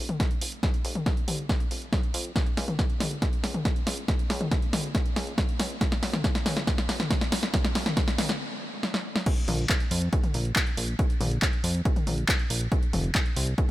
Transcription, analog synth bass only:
0, 0, Header, 1, 2, 480
1, 0, Start_track
1, 0, Key_signature, -5, "minor"
1, 0, Tempo, 431655
1, 702, Time_signature, 4, 2, 24, 8
1, 15243, End_track
2, 0, Start_track
2, 0, Title_t, "Analog synth bass"
2, 0, Program_c, 0, 38
2, 0, Note_on_c, 0, 29, 90
2, 180, Note_off_c, 0, 29, 0
2, 461, Note_on_c, 0, 29, 82
2, 660, Note_off_c, 0, 29, 0
2, 941, Note_on_c, 0, 29, 107
2, 1140, Note_off_c, 0, 29, 0
2, 1421, Note_on_c, 0, 36, 92
2, 1619, Note_off_c, 0, 36, 0
2, 1901, Note_on_c, 0, 29, 87
2, 2099, Note_off_c, 0, 29, 0
2, 2381, Note_on_c, 0, 41, 82
2, 2579, Note_off_c, 0, 41, 0
2, 2860, Note_on_c, 0, 37, 103
2, 3059, Note_off_c, 0, 37, 0
2, 3341, Note_on_c, 0, 32, 97
2, 3539, Note_off_c, 0, 32, 0
2, 3821, Note_on_c, 0, 37, 91
2, 4020, Note_off_c, 0, 37, 0
2, 4301, Note_on_c, 0, 37, 83
2, 4499, Note_off_c, 0, 37, 0
2, 4780, Note_on_c, 0, 37, 104
2, 4979, Note_off_c, 0, 37, 0
2, 5260, Note_on_c, 0, 32, 95
2, 5459, Note_off_c, 0, 32, 0
2, 5740, Note_on_c, 0, 37, 91
2, 5939, Note_off_c, 0, 37, 0
2, 6221, Note_on_c, 0, 37, 81
2, 6419, Note_off_c, 0, 37, 0
2, 6701, Note_on_c, 0, 30, 104
2, 6899, Note_off_c, 0, 30, 0
2, 7181, Note_on_c, 0, 37, 94
2, 7380, Note_off_c, 0, 37, 0
2, 7661, Note_on_c, 0, 30, 91
2, 7859, Note_off_c, 0, 30, 0
2, 8141, Note_on_c, 0, 30, 80
2, 8339, Note_off_c, 0, 30, 0
2, 8620, Note_on_c, 0, 30, 102
2, 8819, Note_off_c, 0, 30, 0
2, 9101, Note_on_c, 0, 37, 98
2, 9299, Note_off_c, 0, 37, 0
2, 10541, Note_on_c, 0, 34, 108
2, 10739, Note_off_c, 0, 34, 0
2, 11021, Note_on_c, 0, 41, 95
2, 11219, Note_off_c, 0, 41, 0
2, 11501, Note_on_c, 0, 34, 91
2, 11700, Note_off_c, 0, 34, 0
2, 11981, Note_on_c, 0, 34, 78
2, 12180, Note_off_c, 0, 34, 0
2, 12461, Note_on_c, 0, 34, 104
2, 12659, Note_off_c, 0, 34, 0
2, 12941, Note_on_c, 0, 41, 91
2, 13139, Note_off_c, 0, 41, 0
2, 13421, Note_on_c, 0, 34, 95
2, 13619, Note_off_c, 0, 34, 0
2, 13902, Note_on_c, 0, 34, 83
2, 14100, Note_off_c, 0, 34, 0
2, 14381, Note_on_c, 0, 29, 104
2, 14580, Note_off_c, 0, 29, 0
2, 14861, Note_on_c, 0, 36, 92
2, 15060, Note_off_c, 0, 36, 0
2, 15243, End_track
0, 0, End_of_file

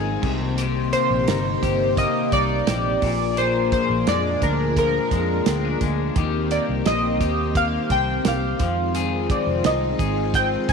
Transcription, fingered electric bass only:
0, 0, Header, 1, 2, 480
1, 0, Start_track
1, 0, Key_signature, -3, "major"
1, 0, Tempo, 697674
1, 398, Time_signature, 4, 2, 24, 8
1, 7381, End_track
2, 0, Start_track
2, 0, Title_t, "Fingered electric bass"
2, 0, Program_c, 0, 33
2, 0, Note_on_c, 0, 32, 98
2, 110, Note_off_c, 0, 32, 0
2, 159, Note_on_c, 0, 36, 85
2, 638, Note_off_c, 0, 36, 0
2, 760, Note_on_c, 0, 34, 89
2, 855, Note_off_c, 0, 34, 0
2, 879, Note_on_c, 0, 31, 92
2, 1070, Note_off_c, 0, 31, 0
2, 1121, Note_on_c, 0, 31, 103
2, 1408, Note_off_c, 0, 31, 0
2, 1598, Note_on_c, 0, 36, 109
2, 1790, Note_off_c, 0, 36, 0
2, 1837, Note_on_c, 0, 34, 100
2, 2029, Note_off_c, 0, 34, 0
2, 2080, Note_on_c, 0, 34, 88
2, 2559, Note_off_c, 0, 34, 0
2, 2680, Note_on_c, 0, 34, 82
2, 2775, Note_off_c, 0, 34, 0
2, 2801, Note_on_c, 0, 41, 92
2, 2991, Note_off_c, 0, 41, 0
2, 3040, Note_on_c, 0, 38, 104
2, 3423, Note_off_c, 0, 38, 0
2, 3518, Note_on_c, 0, 41, 96
2, 3710, Note_off_c, 0, 41, 0
2, 3759, Note_on_c, 0, 38, 88
2, 3950, Note_off_c, 0, 38, 0
2, 3999, Note_on_c, 0, 38, 80
2, 4190, Note_off_c, 0, 38, 0
2, 4238, Note_on_c, 0, 39, 106
2, 4525, Note_off_c, 0, 39, 0
2, 4602, Note_on_c, 0, 36, 93
2, 4695, Note_off_c, 0, 36, 0
2, 4720, Note_on_c, 0, 34, 108
2, 4959, Note_off_c, 0, 34, 0
2, 4959, Note_on_c, 0, 39, 91
2, 5342, Note_off_c, 0, 39, 0
2, 5437, Note_on_c, 0, 36, 88
2, 5628, Note_off_c, 0, 36, 0
2, 5677, Note_on_c, 0, 36, 94
2, 5868, Note_off_c, 0, 36, 0
2, 5916, Note_on_c, 0, 41, 107
2, 6396, Note_off_c, 0, 41, 0
2, 6513, Note_on_c, 0, 29, 86
2, 6610, Note_off_c, 0, 29, 0
2, 6636, Note_on_c, 0, 36, 106
2, 6827, Note_off_c, 0, 36, 0
2, 6878, Note_on_c, 0, 32, 110
2, 7260, Note_off_c, 0, 32, 0
2, 7353, Note_on_c, 0, 36, 92
2, 7381, Note_off_c, 0, 36, 0
2, 7381, End_track
0, 0, End_of_file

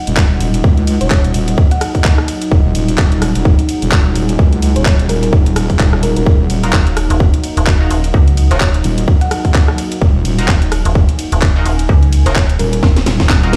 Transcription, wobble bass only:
0, 0, Header, 1, 2, 480
1, 0, Start_track
1, 0, Key_signature, -6, "minor"
1, 0, Tempo, 468750
1, 655, Time_signature, 4, 2, 24, 8
1, 13890, End_track
2, 0, Start_track
2, 0, Title_t, "Wobble bass"
2, 0, Program_c, 0, 39
2, 75, Note_on_c, 0, 27, 99
2, 400, Note_off_c, 0, 27, 0
2, 415, Note_on_c, 0, 27, 99
2, 639, Note_off_c, 0, 27, 0
2, 656, Note_on_c, 0, 37, 98
2, 1013, Note_off_c, 0, 37, 0
2, 1034, Note_on_c, 0, 27, 96
2, 1359, Note_off_c, 0, 27, 0
2, 1375, Note_on_c, 0, 27, 99
2, 1599, Note_off_c, 0, 27, 0
2, 2575, Note_on_c, 0, 27, 99
2, 2799, Note_off_c, 0, 27, 0
2, 2815, Note_on_c, 0, 27, 99
2, 3039, Note_off_c, 0, 27, 0
2, 3055, Note_on_c, 0, 27, 96
2, 3412, Note_off_c, 0, 27, 0
2, 3434, Note_on_c, 0, 27, 103
2, 3652, Note_off_c, 0, 27, 0
2, 3915, Note_on_c, 0, 27, 100
2, 4240, Note_off_c, 0, 27, 0
2, 4256, Note_on_c, 0, 27, 101
2, 4480, Note_off_c, 0, 27, 0
2, 4495, Note_on_c, 0, 37, 99
2, 4852, Note_off_c, 0, 37, 0
2, 4876, Note_on_c, 0, 27, 98
2, 5200, Note_off_c, 0, 27, 0
2, 5217, Note_on_c, 0, 27, 99
2, 5440, Note_off_c, 0, 27, 0
2, 5455, Note_on_c, 0, 27, 101
2, 5919, Note_off_c, 0, 27, 0
2, 5935, Note_on_c, 0, 27, 100
2, 6292, Note_off_c, 0, 27, 0
2, 6314, Note_on_c, 0, 27, 99
2, 6399, Note_off_c, 0, 27, 0
2, 6415, Note_on_c, 0, 27, 101
2, 6639, Note_off_c, 0, 27, 0
2, 6655, Note_on_c, 0, 27, 100
2, 6879, Note_off_c, 0, 27, 0
2, 9056, Note_on_c, 0, 27, 97
2, 9280, Note_off_c, 0, 27, 0
2, 10256, Note_on_c, 0, 27, 99
2, 10480, Note_off_c, 0, 27, 0
2, 10495, Note_on_c, 0, 27, 98
2, 10719, Note_off_c, 0, 27, 0
2, 12896, Note_on_c, 0, 27, 98
2, 13120, Note_off_c, 0, 27, 0
2, 13375, Note_on_c, 0, 27, 96
2, 13599, Note_off_c, 0, 27, 0
2, 13616, Note_on_c, 0, 27, 100
2, 13890, Note_off_c, 0, 27, 0
2, 13890, End_track
0, 0, End_of_file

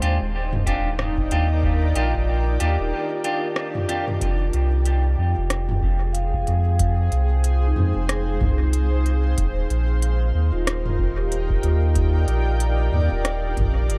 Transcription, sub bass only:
0, 0, Header, 1, 2, 480
1, 0, Start_track
1, 0, Tempo, 645161
1, 1218, Time_signature, 4, 2, 24, 8
1, 10401, End_track
2, 0, Start_track
2, 0, Title_t, "Sub bass"
2, 0, Program_c, 0, 38
2, 20, Note_on_c, 0, 39, 86
2, 142, Note_off_c, 0, 39, 0
2, 159, Note_on_c, 0, 27, 95
2, 959, Note_off_c, 0, 27, 0
2, 978, Note_on_c, 0, 39, 90
2, 1439, Note_off_c, 0, 39, 0
2, 1458, Note_on_c, 0, 34, 90
2, 1918, Note_off_c, 0, 34, 0
2, 1942, Note_on_c, 0, 39, 88
2, 2063, Note_off_c, 0, 39, 0
2, 2081, Note_on_c, 0, 27, 98
2, 2179, Note_off_c, 0, 27, 0
2, 3136, Note_on_c, 0, 29, 99
2, 3353, Note_off_c, 0, 29, 0
2, 3376, Note_on_c, 0, 36, 91
2, 3837, Note_off_c, 0, 36, 0
2, 3857, Note_on_c, 0, 41, 87
2, 3981, Note_off_c, 0, 41, 0
2, 4001, Note_on_c, 0, 29, 96
2, 4800, Note_off_c, 0, 29, 0
2, 4819, Note_on_c, 0, 41, 92
2, 5279, Note_off_c, 0, 41, 0
2, 5299, Note_on_c, 0, 36, 94
2, 5759, Note_off_c, 0, 36, 0
2, 5780, Note_on_c, 0, 41, 90
2, 5902, Note_off_c, 0, 41, 0
2, 5918, Note_on_c, 0, 29, 99
2, 6239, Note_off_c, 0, 29, 0
2, 6257, Note_on_c, 0, 36, 82
2, 6958, Note_off_c, 0, 36, 0
2, 6978, Note_on_c, 0, 27, 100
2, 7194, Note_off_c, 0, 27, 0
2, 7219, Note_on_c, 0, 34, 90
2, 7679, Note_off_c, 0, 34, 0
2, 7699, Note_on_c, 0, 39, 89
2, 7821, Note_off_c, 0, 39, 0
2, 7834, Note_on_c, 0, 27, 100
2, 8637, Note_off_c, 0, 27, 0
2, 8655, Note_on_c, 0, 39, 94
2, 9117, Note_off_c, 0, 39, 0
2, 9136, Note_on_c, 0, 34, 92
2, 9598, Note_off_c, 0, 34, 0
2, 9616, Note_on_c, 0, 39, 88
2, 9740, Note_off_c, 0, 39, 0
2, 9757, Note_on_c, 0, 27, 97
2, 10079, Note_off_c, 0, 27, 0
2, 10098, Note_on_c, 0, 34, 83
2, 10335, Note_off_c, 0, 34, 0
2, 10340, Note_on_c, 0, 31, 80
2, 10401, Note_off_c, 0, 31, 0
2, 10401, End_track
0, 0, End_of_file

